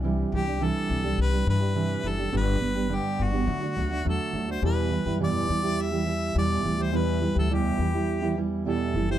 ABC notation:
X:1
M:4/4
L:1/16
Q:1/4=104
K:Em
V:1 name="Harmonica"
z2 G2 A4 B2 B4 A2 | B4 G2 F6 A3 c | B4 d4 e4 d3 c | B3 A G6 z2 A3 c |]
V:2 name="Felt piano"
z16 | z16 | [B,EGB]16 | [G,B,EB]16 |]
V:3 name="Steel-string acoustic guitar"
[C,E,G,DG]2 [E,G,DG] [G,DG] [C,E,G,DG]3 [G,DG]2 [G,DG] [E,G,DG] [G,DG] [C,E,G,DG]2 [E,G,DG] [G,DG] | [G,,D,G,B,DG]2 [G,B,D] [G,B,DG] [G,,D,G,B,DG]3 [G,B,DG] [D,F,A,DF] [A,DF] [F,A,DF] [A,DF] [D,F,A,DF]2 [F,A,DF] [A,DF] | [E,,B,,E,G,EG]2 [E,G,EG] [E,G,EG] [E,,B,,E,G,EG]2 [E,G,E] [E,G,EG]2 [E,G,EG] [E,G,EG]2 [E,,B,,E,G,EG]2 [E,G,EG] [E,G,EG] | [E,,B,,E,G,EG]2 [E,G,EG] [E,G,EG] [E,,B,,E,G,EG]2 [E,G,EG] [E,G,EG]2 [E,G,EG] [E,G,EG]2 [E,,B,,E,G,EG]2 [E,G,EG] [E,G,EG] |]
V:4 name="Upright bass" clef=bass
C,,2 C,,3 z C,,2 C,,2 G,,4 F,,,2 | G,,,2 G,,,3 z G,,,2 D,2 D,,2 E,, z D,,2 | E,,3 F,,3 E,,6 E,,2 D,,2 | E,,3 D,,3 E,,8 F,,,2 |]